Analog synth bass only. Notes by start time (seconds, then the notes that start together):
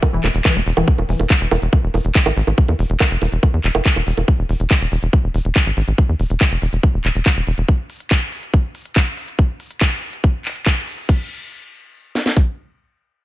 0.13 E1
0.24 E1
0.34 E1
0.56 E1
0.66 E1
0.77 E1
0.98 E1
1.09 E1
1.20 E1
1.41 E1
1.51 E1
1.62 E1
1.83 E1
1.94 E1
2.05 E1
2.26 A1
2.37 A1
2.47 A1
2.69 E2
2.79 E1
2.90 E1
3.11 F1
3.22 E1
3.32 E1
3.54 E2
3.64 E1
3.75 F1
3.96 E1
4.07 E1
4.17 E1
4.39 E1
4.49 E1
4.60 E1
4.81 E1
4.92 E1
5.03 E1
5.24 E1
5.34 E1
5.45 E1
5.66 A1
5.77 A1
5.88 A1
6.09 E2
6.20 E1
6.30 E1
6.51 F1
6.62 E1
6.73 E1
6.94 E1
7.05 E1
7.15 E1
7.37 E1
7.47 E1
7.58 E1